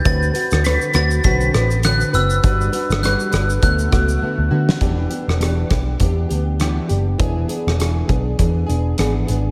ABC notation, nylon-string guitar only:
X:1
M:4/4
L:1/8
Q:"Swing 16ths" 1/4=101
K:Em
V:1 name="Nylon-string guitar"
[D,CFB] [CFB] [D,CFB] [CFB] [D,CFB] [CFB] [D,CFB] [CFB] | [G,DFB] [DFB] [G,DFB] [DFB] [D,A,B,F] [A,B,F] [D,A,B,F] [A,B,F] | [E,B,DG] [B,DG] [E,B,DG] [B,DG] [E,B,DG] [B,DG] [E,B,DG] [B,DG] | [E,B,D^G] [B,DG] [E,B,DG] [B,DG] [E,B,DG] [B,DG] [E,B,DG] [B,DG] |]